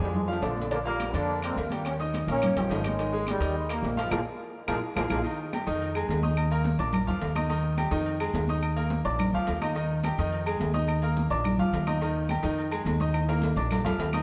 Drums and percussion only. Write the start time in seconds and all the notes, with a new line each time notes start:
0.00 high conga
0.05 high timbale
0.14 high conga, low conga
0.28 high conga
0.33 low timbale
0.43 high conga, low timbale
0.57 high conga
0.62 low timbale
0.71 high conga, high timbale
0.85 high conga
1.00 high conga, high timbale, low timbale, claves
1.14 high conga, high timbale
1.28 high conga
1.42 high conga, high timbale, claves
1.56 high conga, low timbale
1.70 high conga, high timbale
1.85 high conga, high timbale, claves
1.99 high conga
2.14 high conga, high timbale, low timbale
2.28 high conga, high timbale
2.42 high conga, low conga, high timbale, claves
2.57 high conga, low conga, high timbale
2.71 high conga, high timbale, low timbale
2.84 high conga, high timbale, claves
2.99 high conga, high timbale
3.14 high conga
3.27 high conga, high timbale, low timbale, claves
3.42 high conga, high timbale
3.56 high conga
3.69 high conga, high timbale, claves
3.83 high conga, low timbale
3.97 high conga, high timbale
4.12 high conga, high timbale, claves
4.68 high conga, high timbale, claves
4.96 high conga, high timbale, claves
5.10 high conga, high timbale, claves
5.26 high conga, low agogo
5.39 high conga
5.53 high conga, low timbale, low agogo, claves
5.67 high conga
5.81 high conga, low agogo
5.95 high conga, low agogo, claves
6.09 high conga, low timbale, low agogo
6.23 high conga
6.37 high conga, low agogo, claves
6.50 high conga, low agogo
6.64 high conga, low timbale
6.79 high conga, low agogo
6.93 high conga, low conga, low agogo, claves
7.08 high conga, low conga
7.21 high conga, low timbale, low agogo
7.35 high conga, low agogo, claves
7.49 high conga, low agogo
7.63 high conga
7.78 high conga, low timbale, low agogo, claves
7.92 high conga
8.06 high conga, low agogo
8.20 high conga, low agogo, claves
8.34 high conga, low timbale, low agogo
8.48 high conga
8.62 high conga, low agogo, claves
8.76 high conga, low agogo
8.90 high conga, low timbale
9.05 high conga, low agogo
9.19 high conga, low conga, low agogo, claves
9.34 high conga
9.47 high conga, low timbale, low agogo
9.61 high conga, low agogo, claves
9.76 high conga, low agogo
9.90 high conga
10.04 high conga, low timbale, low agogo, claves
10.18 high conga
10.32 high conga, low agogo
10.46 high conga, low agogo, claves
10.60 high conga, low timbale, low agogo
10.74 high conga
10.88 high conga, low agogo, claves
11.02 low agogo
11.16 high conga, low timbale
11.30 high conga, low agogo
11.44 high conga, low conga, low agogo, claves
11.59 high conga, low conga
11.73 high conga, low timbale, low agogo
11.87 high conga, low agogo, claves
12.01 high conga, low agogo
12.15 high conga
12.29 high conga, low timbale, low agogo, claves
12.44 high conga
12.58 high conga, low agogo
12.71 high conga, low agogo, claves
12.85 high conga, low timbale, low agogo
13.00 high conga
13.14 high conga, high timbale, low agogo, claves
13.28 high conga, high timbale, low agogo
13.42 high conga, low timbale
13.57 high conga, low timbale, low agogo
13.71 high conga, low conga, low timbale, low agogo, claves
13.86 high conga, low conga, low timbale
14.00 low timbale, low agogo
14.13 high conga, low timbale, low agogo, claves